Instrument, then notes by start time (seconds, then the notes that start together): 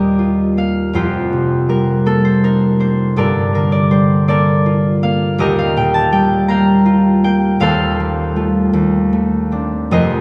harp
Already playing: D#1 D#2 A#2 G3 A#3 D4 F4 G4 A#4 D5 D#5
0.19 F4
0.57 A#3 F5
0.93 F1 F2 F4 G4 C5
1.33 C3
1.69 G3 A#4
2.06 A#3 A4
2.25 C5
2.44 D#4 A#4
2.80 A#3 C5
3.16 G1 G2 A4 A#4 D5
3.54 D3 A#4
3.72 D5
3.91 G3 C5
4.28 A#3 A4 A#4 D5
4.66 F4
5.03 A#3 F5
5.38 D#1 D#2 G4 A#4 D#5
5.59 F5
5.77 A#2 G5
5.94 A5
6.12 G3 G5
6.48 A#3 F5 G5 A#5
6.86 F4
7.24 A#3 G5
7.60 D#1 D#2 A4 C5 F5
8.00 G3
8.36 A3 F4
8.73 D#2
9.13 A3
9.52 C4 D4
9.91 F1 F2 A#4 C5 D#5